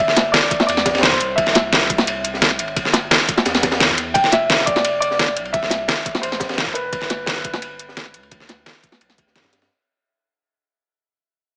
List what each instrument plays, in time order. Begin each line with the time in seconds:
Already playing: sub bass G1, grand piano E5
0.08 snare
0.16 snare, closed hi-hat, ride, high bongo
0.32 grand piano D5, snare, closed hi-hat, ride
0.51 kick, closed hi-hat, ride
0.60 grand piano E5, snare, high bongo
0.67 sub bass E2, grand piano D5, closed hi-hat, ride
0.77 snare
0.86 sub bass E2, kick, snare, closed hi-hat, ride
0.95 snare, ride
0.98 grand piano C5, snare, ride
1.03 snare, closed hi-hat, ride
1.12 kick
1.20 sub bass C2, closed hi-hat, ride
1.36 sub bass C2, grand piano E5, kick, closed hi-hat, ride
1.46 snare, ride
1.53 grand piano E5, snare, closed hi-hat, ride, high bongo
1.73 snare, closed hi-hat, ride
1.82 snare
1.90 kick, closed hi-hat, ride
1.98 snare, high bongo
2.07 closed hi-hat, ride
2.24 closed hi-hat, ride
2.34 snare
2.42 snare, closed hi-hat, ride
2.51 snare
2.59 sub bass G1, closed hi-hat, ride
2.68 ride
2.77 kick, closed hi-hat, ride
2.85 snare
2.93 snare, closed hi-hat, ride, high bongo
3.11 snare, closed hi-hat, ride
3.29 kick, closed hi-hat, ride
3.37 snare, high bongo
3.45 sub bass E2, snare, closed hi-hat, ride
3.54 snare, ride
3.63 sub bass E2, kick, snare, closed hi-hat, ride
3.72 snare, ride
3.80 snare, closed hi-hat, ride
3.89 kick
3.98 closed hi-hat, ride
4.14 sub bass F1, grand piano G5, kick, closed hi-hat, ride
4.24 snare, ride
4.32 grand piano E5, snare, closed hi-hat, ride, high bongo
4.50 snare, closed hi-hat, ride
4.59 snare
4.66 grand piano D5, kick, closed hi-hat, ride
4.76 snare, high bongo
4.85 closed hi-hat, ride
5.00 grand piano D5, closed hi-hat, ride
5.11 snare
5.19 snare, closed hi-hat, ride
5.28 snare
5.36 sub bass C2, closed hi-hat, ride
5.45 ride
5.53 grand piano E5, kick, closed hi-hat, ride
5.63 snare
5.70 snare, closed hi-hat, ride, high bongo
5.88 snare, closed hi-hat, ride
6.06 kick, closed hi-hat, ride
6.14 snare, high bongo
6.22 sub bass A1, grand piano C5, closed hi-hat, ride
6.32 snare
6.40 sub bass A1, kick, snare, closed hi-hat, ride
6.49 snare, ride
6.53 snare, ride
6.58 snare, closed hi-hat, ride
6.67 kick
6.74 sub bass F1, grand piano B4, closed hi-hat, ride
6.92 sub bass G1, kick, closed hi-hat, ride
7.01 snare, ride
7.10 snare, closed hi-hat, ride, high bongo
7.26 snare, closed hi-hat, ride
7.36 snare
7.44 kick, closed hi-hat, ride
7.53 snare, high bongo
7.62 closed hi-hat, ride
7.79 closed hi-hat, ride
7.89 snare
7.97 snare, closed hi-hat, ride
8.06 snare
8.14 sub bass D2, closed hi-hat, ride
8.23 ride
8.31 kick, closed hi-hat, ride
8.40 snare
8.49 snare, closed hi-hat, ride, high bongo
8.66 snare, closed hi-hat, ride
8.83 kick, closed hi-hat, ride
8.92 snare, high bongo
9.01 sub bass B1, closed hi-hat, ride
9.09 snare
9.18 sub bass D2, kick, closed hi-hat, ride
9.27 snare
9.36 sub bass G2, snare, closed hi-hat, ride
9.44 kick, snare, ride
9.53 snare, closed hi-hat, ride
9.62 snare, ride